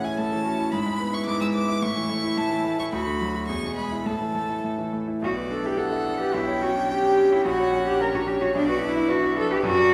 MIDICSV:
0, 0, Header, 1, 4, 480
1, 0, Start_track
1, 0, Key_signature, 3, "major"
1, 0, Tempo, 549451
1, 637, Time_signature, 2, 2, 24, 8
1, 2561, Tempo, 573614
1, 4481, Tempo, 558140
1, 4482, Key_signature, 2, "minor"
1, 5921, Tempo, 546448
1, 8590, End_track
2, 0, Start_track
2, 0, Title_t, "Violin"
2, 0, Program_c, 0, 40
2, 34, Note_on_c, 0, 80, 73
2, 149, Note_on_c, 0, 81, 91
2, 162, Note_off_c, 0, 80, 0
2, 625, Note_on_c, 0, 83, 93
2, 638, Note_off_c, 0, 81, 0
2, 994, Note_on_c, 0, 85, 84
2, 1007, Note_off_c, 0, 83, 0
2, 1093, Note_off_c, 0, 85, 0
2, 1099, Note_on_c, 0, 86, 95
2, 1224, Note_off_c, 0, 86, 0
2, 1230, Note_on_c, 0, 88, 85
2, 1279, Note_off_c, 0, 88, 0
2, 1340, Note_on_c, 0, 86, 84
2, 1589, Note_on_c, 0, 85, 92
2, 1602, Note_off_c, 0, 86, 0
2, 2077, Note_on_c, 0, 81, 93
2, 2090, Note_off_c, 0, 85, 0
2, 2435, Note_off_c, 0, 81, 0
2, 2440, Note_on_c, 0, 85, 88
2, 2489, Note_off_c, 0, 85, 0
2, 2557, Note_on_c, 0, 83, 86
2, 3018, Note_off_c, 0, 83, 0
2, 3023, Note_on_c, 0, 85, 83
2, 3255, Note_off_c, 0, 85, 0
2, 3260, Note_on_c, 0, 83, 70
2, 3505, Note_on_c, 0, 81, 72
2, 3517, Note_off_c, 0, 83, 0
2, 4238, Note_off_c, 0, 81, 0
2, 4481, Note_on_c, 0, 74, 70
2, 4964, Note_on_c, 0, 78, 76
2, 4977, Note_off_c, 0, 74, 0
2, 5439, Note_on_c, 0, 79, 86
2, 5452, Note_off_c, 0, 78, 0
2, 6407, Note_off_c, 0, 79, 0
2, 6412, Note_on_c, 0, 78, 81
2, 6900, Note_on_c, 0, 73, 80
2, 6913, Note_off_c, 0, 78, 0
2, 7373, Note_off_c, 0, 73, 0
2, 7379, Note_on_c, 0, 74, 84
2, 7837, Note_on_c, 0, 71, 81
2, 7850, Note_off_c, 0, 74, 0
2, 8315, Note_off_c, 0, 71, 0
2, 8320, Note_on_c, 0, 74, 101
2, 8590, Note_off_c, 0, 74, 0
2, 8590, End_track
3, 0, Start_track
3, 0, Title_t, "Cello"
3, 0, Program_c, 1, 42
3, 0, Note_on_c, 1, 68, 66
3, 150, Note_on_c, 1, 69, 68
3, 163, Note_off_c, 1, 68, 0
3, 389, Note_off_c, 1, 69, 0
3, 394, Note_on_c, 1, 66, 56
3, 623, Note_on_c, 1, 64, 64
3, 636, Note_off_c, 1, 66, 0
3, 1575, Note_off_c, 1, 64, 0
3, 1581, Note_on_c, 1, 64, 85
3, 2566, Note_on_c, 1, 66, 78
3, 2579, Note_off_c, 1, 64, 0
3, 3023, Note_off_c, 1, 66, 0
3, 3028, Note_on_c, 1, 68, 63
3, 3501, Note_off_c, 1, 68, 0
3, 3514, Note_on_c, 1, 69, 61
3, 4229, Note_off_c, 1, 69, 0
3, 4494, Note_on_c, 1, 66, 93
3, 4563, Note_off_c, 1, 66, 0
3, 4724, Note_on_c, 1, 69, 79
3, 4853, Note_on_c, 1, 67, 85
3, 4866, Note_off_c, 1, 69, 0
3, 4952, Note_on_c, 1, 69, 90
3, 4965, Note_off_c, 1, 67, 0
3, 5316, Note_off_c, 1, 69, 0
3, 5321, Note_on_c, 1, 67, 83
3, 5443, Note_on_c, 1, 64, 93
3, 5456, Note_off_c, 1, 67, 0
3, 5682, Note_off_c, 1, 64, 0
3, 5686, Note_on_c, 1, 66, 81
3, 5754, Note_off_c, 1, 66, 0
3, 5934, Note_on_c, 1, 67, 93
3, 6295, Note_on_c, 1, 64, 91
3, 6309, Note_off_c, 1, 67, 0
3, 6407, Note_off_c, 1, 64, 0
3, 6412, Note_on_c, 1, 66, 102
3, 6766, Note_off_c, 1, 66, 0
3, 6776, Note_on_c, 1, 67, 91
3, 6889, Note_off_c, 1, 67, 0
3, 6894, Note_on_c, 1, 70, 97
3, 6942, Note_off_c, 1, 70, 0
3, 7014, Note_on_c, 1, 66, 78
3, 7062, Note_off_c, 1, 66, 0
3, 7123, Note_on_c, 1, 67, 95
3, 7173, Note_off_c, 1, 67, 0
3, 7247, Note_on_c, 1, 66, 92
3, 7296, Note_off_c, 1, 66, 0
3, 7368, Note_on_c, 1, 62, 116
3, 7487, Note_off_c, 1, 62, 0
3, 7494, Note_on_c, 1, 66, 93
3, 7600, Note_off_c, 1, 66, 0
3, 7606, Note_on_c, 1, 64, 97
3, 7848, Note_on_c, 1, 66, 100
3, 7861, Note_off_c, 1, 64, 0
3, 8085, Note_off_c, 1, 66, 0
3, 8097, Note_on_c, 1, 69, 104
3, 8208, Note_off_c, 1, 69, 0
3, 8222, Note_on_c, 1, 67, 105
3, 8266, Note_off_c, 1, 67, 0
3, 8332, Note_on_c, 1, 66, 125
3, 8590, Note_off_c, 1, 66, 0
3, 8590, End_track
4, 0, Start_track
4, 0, Title_t, "Grand piano"
4, 0, Program_c, 2, 0
4, 0, Control_c, 2, 64, 127
4, 0, Note_on_c, 2, 45, 60
4, 0, Note_on_c, 2, 52, 43
4, 0, Note_on_c, 2, 61, 50
4, 35, Note_on_c, 2, 64, 48
4, 109, Note_off_c, 2, 61, 0
4, 147, Note_off_c, 2, 45, 0
4, 160, Note_on_c, 2, 45, 53
4, 229, Note_off_c, 2, 64, 0
4, 283, Note_off_c, 2, 52, 0
4, 283, Note_on_c, 2, 52, 47
4, 396, Note_on_c, 2, 61, 52
4, 472, Note_off_c, 2, 52, 0
4, 514, Note_on_c, 2, 64, 51
4, 588, Note_off_c, 2, 61, 0
4, 622, Note_off_c, 2, 45, 0
4, 632, Note_on_c, 2, 44, 64
4, 635, Note_off_c, 2, 64, 0
4, 654, Control_c, 2, 64, 0
4, 754, Note_on_c, 2, 56, 46
4, 802, Control_c, 2, 64, 127
4, 873, Note_on_c, 2, 59, 52
4, 946, Note_off_c, 2, 56, 0
4, 989, Note_on_c, 2, 64, 49
4, 1065, Note_off_c, 2, 59, 0
4, 1099, Note_off_c, 2, 44, 0
4, 1113, Note_on_c, 2, 44, 57
4, 1183, Note_off_c, 2, 64, 0
4, 1233, Note_on_c, 2, 56, 49
4, 1354, Note_on_c, 2, 59, 54
4, 1425, Note_off_c, 2, 56, 0
4, 1471, Note_on_c, 2, 64, 51
4, 1546, Note_off_c, 2, 59, 0
4, 1578, Note_off_c, 2, 44, 0
4, 1592, Note_off_c, 2, 64, 0
4, 1593, Note_on_c, 2, 45, 67
4, 1610, Control_c, 2, 64, 0
4, 1711, Note_on_c, 2, 52, 49
4, 1768, Control_c, 2, 64, 127
4, 1827, Note_on_c, 2, 57, 55
4, 1904, Note_off_c, 2, 52, 0
4, 1950, Note_on_c, 2, 64, 49
4, 2024, Note_off_c, 2, 57, 0
4, 2060, Note_off_c, 2, 45, 0
4, 2073, Note_on_c, 2, 45, 58
4, 2146, Note_off_c, 2, 64, 0
4, 2186, Note_on_c, 2, 52, 48
4, 2309, Note_on_c, 2, 57, 52
4, 2386, Note_off_c, 2, 52, 0
4, 2429, Note_on_c, 2, 64, 50
4, 2508, Note_off_c, 2, 57, 0
4, 2546, Note_off_c, 2, 45, 0
4, 2556, Note_off_c, 2, 64, 0
4, 2556, Note_on_c, 2, 38, 67
4, 2579, Control_c, 2, 64, 0
4, 2671, Note_on_c, 2, 50, 47
4, 2704, Control_c, 2, 64, 127
4, 2793, Note_on_c, 2, 54, 49
4, 2862, Note_off_c, 2, 50, 0
4, 2910, Note_on_c, 2, 66, 43
4, 2983, Note_off_c, 2, 54, 0
4, 3015, Note_off_c, 2, 38, 0
4, 3030, Note_off_c, 2, 66, 0
4, 3031, Note_on_c, 2, 40, 59
4, 3049, Control_c, 2, 64, 0
4, 3149, Note_on_c, 2, 47, 38
4, 3181, Control_c, 2, 64, 127
4, 3267, Note_on_c, 2, 56, 45
4, 3342, Note_off_c, 2, 47, 0
4, 3386, Note_on_c, 2, 64, 44
4, 3462, Note_off_c, 2, 56, 0
4, 3498, Note_off_c, 2, 40, 0
4, 3504, Note_on_c, 2, 45, 58
4, 3510, Note_off_c, 2, 64, 0
4, 3528, Control_c, 2, 64, 0
4, 3625, Note_on_c, 2, 52, 39
4, 3685, Control_c, 2, 64, 127
4, 3748, Note_on_c, 2, 57, 42
4, 3825, Note_off_c, 2, 52, 0
4, 3868, Note_on_c, 2, 64, 39
4, 3947, Note_off_c, 2, 57, 0
4, 3979, Note_off_c, 2, 45, 0
4, 3992, Note_on_c, 2, 45, 44
4, 4067, Note_off_c, 2, 64, 0
4, 4109, Note_on_c, 2, 52, 37
4, 4233, Note_on_c, 2, 57, 43
4, 4309, Note_off_c, 2, 52, 0
4, 4354, Note_on_c, 2, 64, 43
4, 4430, Note_off_c, 2, 57, 0
4, 4464, Note_off_c, 2, 45, 0
4, 4477, Note_on_c, 2, 35, 63
4, 4478, Note_off_c, 2, 64, 0
4, 4498, Control_c, 2, 64, 0
4, 4598, Note_on_c, 2, 71, 48
4, 4635, Control_c, 2, 64, 127
4, 4716, Note_on_c, 2, 62, 50
4, 4794, Note_off_c, 2, 71, 0
4, 4837, Note_on_c, 2, 64, 45
4, 4912, Note_off_c, 2, 62, 0
4, 4953, Note_on_c, 2, 62, 55
4, 4960, Note_off_c, 2, 64, 0
4, 5077, Note_on_c, 2, 64, 44
4, 5150, Note_off_c, 2, 62, 0
4, 5196, Note_on_c, 2, 62, 52
4, 5200, Note_off_c, 2, 64, 0
4, 5322, Note_on_c, 2, 71, 54
4, 5390, Note_off_c, 2, 62, 0
4, 5410, Note_off_c, 2, 35, 0
4, 5438, Note_on_c, 2, 35, 68
4, 5441, Note_off_c, 2, 71, 0
4, 5459, Control_c, 2, 64, 0
4, 5556, Note_on_c, 2, 73, 55
4, 5615, Control_c, 2, 64, 127
4, 5675, Note_on_c, 2, 61, 54
4, 5751, Note_off_c, 2, 73, 0
4, 5792, Note_on_c, 2, 62, 46
4, 5870, Note_off_c, 2, 61, 0
4, 5914, Note_on_c, 2, 61, 50
4, 5917, Note_off_c, 2, 62, 0
4, 6037, Note_on_c, 2, 62, 49
4, 6113, Note_off_c, 2, 61, 0
4, 6162, Note_off_c, 2, 62, 0
4, 6162, Note_on_c, 2, 61, 54
4, 6282, Note_on_c, 2, 73, 54
4, 6358, Note_off_c, 2, 61, 0
4, 6377, Note_off_c, 2, 35, 0
4, 6406, Note_off_c, 2, 73, 0
4, 6406, Note_on_c, 2, 34, 73
4, 6425, Control_c, 2, 64, 0
4, 6532, Note_on_c, 2, 73, 60
4, 6558, Control_c, 2, 64, 127
4, 6650, Note_on_c, 2, 61, 57
4, 6725, Note_off_c, 2, 73, 0
4, 6770, Note_on_c, 2, 62, 49
4, 6844, Note_off_c, 2, 61, 0
4, 6890, Note_on_c, 2, 61, 57
4, 6892, Note_off_c, 2, 62, 0
4, 7008, Note_on_c, 2, 62, 50
4, 7085, Note_off_c, 2, 61, 0
4, 7126, Note_on_c, 2, 61, 56
4, 7132, Note_off_c, 2, 62, 0
4, 7250, Note_on_c, 2, 73, 60
4, 7323, Note_off_c, 2, 61, 0
4, 7344, Note_off_c, 2, 34, 0
4, 7368, Note_on_c, 2, 35, 74
4, 7372, Note_off_c, 2, 73, 0
4, 7390, Control_c, 2, 64, 0
4, 7491, Note_on_c, 2, 71, 61
4, 7536, Control_c, 2, 64, 127
4, 7605, Note_on_c, 2, 62, 60
4, 7679, Note_off_c, 2, 71, 0
4, 7728, Note_on_c, 2, 64, 52
4, 7795, Note_off_c, 2, 62, 0
4, 7846, Note_off_c, 2, 64, 0
4, 7846, Note_on_c, 2, 62, 67
4, 7970, Note_on_c, 2, 64, 58
4, 8036, Note_off_c, 2, 62, 0
4, 8087, Note_off_c, 2, 64, 0
4, 8087, Note_on_c, 2, 62, 68
4, 8209, Note_on_c, 2, 71, 67
4, 8278, Note_off_c, 2, 62, 0
4, 8293, Note_off_c, 2, 35, 0
4, 8327, Note_off_c, 2, 71, 0
4, 8328, Note_on_c, 2, 42, 88
4, 8339, Control_c, 2, 64, 0
4, 8448, Note_on_c, 2, 74, 70
4, 8480, Control_c, 2, 64, 127
4, 8590, Note_off_c, 2, 42, 0
4, 8590, Note_off_c, 2, 74, 0
4, 8590, End_track
0, 0, End_of_file